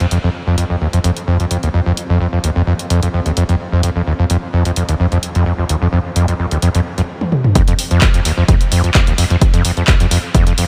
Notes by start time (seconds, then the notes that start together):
0.00 F2, closed hi-hat
0.11 F2, closed hi-hat
0.24 F2
0.47 F2
0.58 F2, closed hi-hat
0.70 F2
0.81 D#2
0.93 F2, closed hi-hat
1.04 F2, closed hi-hat
1.17 closed hi-hat
1.28 F2
1.40 F2, closed hi-hat
1.51 F2, closed hi-hat
1.63 D#2, closed hi-hat
1.74 F2
1.86 F2
1.97 closed hi-hat
2.10 F2
2.21 F2
2.33 F2
2.44 D#2, closed hi-hat
2.56 F2
2.67 F2
2.79 closed hi-hat
2.90 F2, closed hi-hat
3.03 F2, closed hi-hat
3.14 F2
3.26 D#2, closed hi-hat
3.37 F2, closed hi-hat
3.49 F2, closed hi-hat
3.72 F2
3.83 F2, closed hi-hat
3.96 F2
4.07 D#2
4.19 F2
4.30 F2, closed hi-hat
4.53 F2
4.65 F2, closed hi-hat
4.76 F2, closed hi-hat
4.89 D#2, closed hi-hat
5.00 F2
5.12 F2, closed hi-hat
5.23 closed hi-hat
5.35 F2, closed hi-hat
5.46 F2
5.58 F2
5.69 D#2, closed hi-hat
5.82 F2
5.93 F2
6.16 F2, closed hi-hat
6.28 F2, closed hi-hat
6.39 F2
6.51 D#2, closed hi-hat
6.62 F2, closed hi-hat
6.75 F2, closed hi-hat
6.98 F#2, closed hi-hat
7.21 high tom
7.32 mid tom
7.44 mid tom
7.55 F2, kick, closed hi-hat
7.68 F2, closed hi-hat
7.79 open hi-hat
7.91 F2, closed hi-hat
8.01 kick, clap, closed hi-hat
8.14 F2, closed hi-hat
8.25 D#2, open hi-hat
8.38 F2
8.48 F2, kick, closed hi-hat
8.61 closed hi-hat
8.72 F2, open hi-hat
8.84 F2, closed hi-hat
8.94 F2, kick, clap, closed hi-hat
9.07 D#2, closed hi-hat
9.18 F2, open hi-hat
9.30 F2, closed hi-hat
9.41 kick, closed hi-hat
9.54 F2, closed hi-hat
9.65 F2, open hi-hat
9.77 F2, closed hi-hat
9.87 D#2, kick, clap, closed hi-hat
10.00 F2, closed hi-hat
10.11 F2, open hi-hat
10.34 F2, kick, closed hi-hat
10.47 F2, closed hi-hat
10.58 F2, open hi-hat